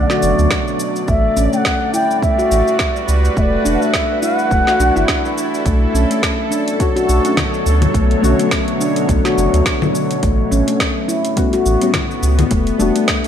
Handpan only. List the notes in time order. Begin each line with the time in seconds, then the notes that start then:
0.10 F#4
1.08 A3
1.37 C#4
1.53 A3
1.94 E4
2.23 A3
2.38 F#4
3.36 A3
3.65 D4
3.81 A3
4.22 E4
4.51 A3
4.68 F#4
4.80 D4
4.96 E4
5.09 D4
5.65 A3
5.94 C#4
6.10 A3
6.51 D4
6.80 A3
6.96 F#4
7.94 A3
8.23 C#4
8.39 A3
8.80 D4
9.09 A3
9.25 F#4
10.23 A3
10.51 C#4
10.67 A3
11.08 E4
11.37 A3
11.53 F#4
12.51 A3
12.80 D4
12.96 A3